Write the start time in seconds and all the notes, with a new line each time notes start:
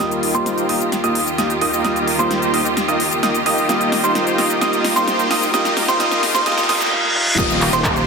0.00 D#2 D#3 G3 A#3 D#4 F4 G4 D#5 D#6, riser, shaker
0.11 closed hi-hat, shaker
0.23 open hi-hat
0.33 G3 A#3 D#4 F4 G4 C5 C6, closed hi-hat, shaker
0.46 snare, closed hi-hat, shaker
0.58 closed hi-hat, shaker
0.69 A#3 D#4 F4 G4 D#5 D#6, open hi-hat
0.81 closed hi-hat, shaker
0.92 snare, closed hi-hat, shaker
1.04 A#3 D#4 F4 G4 D#5 D#6, closed hi-hat, shaker
1.15 open hi-hat
1.27 closed hi-hat, shaker
1.38 A#3 D#4 F4 G4 D#5 D#6, snare, closed hi-hat, shaker
1.50 closed hi-hat, shaker
1.61 A#3 D#4 F4 G4 D#5 D#6, open hi-hat
1.74 shaker
1.84 G3 A#3 D#4 F4 G4 D#5 D#6, snare, closed hi-hat, shaker
1.96 closed hi-hat, shaker
2.08 open hi-hat
2.18 G3 A#3 D#4 F4 G4 C5 C6, shaker
2.31 snare, closed hi-hat, shaker
2.42 closed hi-hat, shaker
2.54 A#3 D#4 F4 G4 D#5 D#6, open hi-hat
2.65 closed hi-hat, shaker
2.77 snare, closed hi-hat, shaker
2.88 A#3 D#4 F4 G4 D#5 D#6, closed hi-hat, shaker
3.00 open hi-hat
3.12 closed hi-hat, shaker
3.23 A#3 D#4 F4 G4 D#5 D#6, snare, closed hi-hat, shaker
3.35 closed hi-hat, shaker
3.46 A#3 D#4 F4 G4 D#5 D#6, open hi-hat
3.58 shaker
3.68 G3 A#3 D#4 F4 G4 D#5 D#6, snare, closed hi-hat, shaker
3.81 closed hi-hat, shaker
3.92 snare, open hi-hat
4.02 G3 A#3 D#4 F4 G4 C5 C6, closed hi-hat, shaker
4.15 snare, closed hi-hat, shaker
4.27 closed hi-hat, shaker
4.38 A#3 D#4 F4 G4 D#5 D#6, snare, open hi-hat
4.50 closed hi-hat, shaker
4.61 G3 A#3 D#4 F4 G4 D#5 D#6, snare, closed hi-hat, shaker
4.73 closed hi-hat, shaker
4.84 snare, open hi-hat
4.95 G3 A#3 D#4 F4 G4 C5 C6, closed hi-hat, shaker
5.08 snare, closed hi-hat, shaker
5.19 closed hi-hat, shaker
5.31 A#3 D#4 F4 G4 D#5 D#6, snare, open hi-hat
5.43 shaker
5.53 G3 A#3 D#4 F4 G4 D#5 D#6, snare, closed hi-hat, shaker
5.65 snare, closed hi-hat, shaker
5.77 snare, open hi-hat
5.87 G3 A#3 D#4 F4 G4 C5 C6, snare, closed hi-hat, shaker
5.99 G3 A#3 D#4 F4 G4 D#5 D#6, snare, closed hi-hat, shaker
6.11 snare, closed hi-hat, shaker
6.23 snare, open hi-hat
6.33 G3 A#3 D#4 F4 G4 C5 C6, snare, shaker
6.45 G3 A#3 D#4 F4 G4 D#5 D#6, snare, closed hi-hat, reverse cymbal, shaker
6.52 snare
6.58 snare, closed hi-hat, shaker
6.63 snare
6.68 G3 A#3 D#4 F4 G4 D#5 D#6, snare, open hi-hat
6.75 snare
6.81 snare, closed hi-hat, shaker
6.86 snare
6.92 G3 A#3 D#4 F4, high tom
7.04 high tom
7.15 G3 A#3 D#4 F4, mid tom
7.27 mid tom
7.38 D#1 D#3 A#3 D#4 F4 G4 D#5 D#6, kick, closed hi-hat, crash, downlifter, shaker
7.50 closed hi-hat, shaker
7.61 clap, open hi-hat
7.73 D#1 A#3 D#4 F4 G4 C5 C6, closed hi-hat, shaker
7.84 kick, clap, closed hi-hat, shaker
7.96 closed hi-hat, shaker